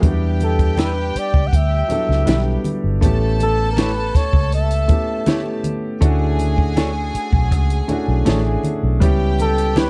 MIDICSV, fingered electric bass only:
0, 0, Header, 1, 3, 480
1, 0, Start_track
1, 0, Tempo, 749064
1, 20, Time_signature, 4, 2, 24, 8
1, 6343, End_track
2, 0, Start_track
2, 0, Title_t, "Fingered electric bass"
2, 0, Program_c, 0, 33
2, 20, Note_on_c, 0, 40, 105
2, 714, Note_off_c, 0, 40, 0
2, 858, Note_on_c, 0, 37, 87
2, 950, Note_off_c, 0, 37, 0
2, 981, Note_on_c, 0, 38, 90
2, 1162, Note_off_c, 0, 38, 0
2, 1338, Note_on_c, 0, 37, 77
2, 1429, Note_off_c, 0, 37, 0
2, 1455, Note_on_c, 0, 35, 87
2, 1638, Note_off_c, 0, 35, 0
2, 1818, Note_on_c, 0, 31, 81
2, 1909, Note_off_c, 0, 31, 0
2, 1938, Note_on_c, 0, 33, 102
2, 2632, Note_off_c, 0, 33, 0
2, 2777, Note_on_c, 0, 37, 75
2, 3141, Note_off_c, 0, 37, 0
2, 3856, Note_on_c, 0, 38, 108
2, 4552, Note_off_c, 0, 38, 0
2, 4697, Note_on_c, 0, 35, 83
2, 4816, Note_off_c, 0, 35, 0
2, 4816, Note_on_c, 0, 37, 106
2, 4998, Note_off_c, 0, 37, 0
2, 5179, Note_on_c, 0, 35, 89
2, 5269, Note_off_c, 0, 35, 0
2, 5300, Note_on_c, 0, 33, 104
2, 5481, Note_off_c, 0, 33, 0
2, 5660, Note_on_c, 0, 35, 88
2, 5777, Note_off_c, 0, 35, 0
2, 5777, Note_on_c, 0, 37, 99
2, 6343, Note_off_c, 0, 37, 0
2, 6343, End_track
3, 0, Start_track
3, 0, Title_t, "Muted fingered electric bass strokes"
3, 739, Note_on_c, 9, 29, 46
3, 803, Note_off_c, 9, 29, 0
3, 2660, Note_on_c, 9, 29, 46
3, 2724, Note_off_c, 9, 29, 0
3, 4579, Note_on_c, 9, 29, 49
3, 4643, Note_off_c, 9, 29, 0
3, 6343, End_track
0, 0, End_of_file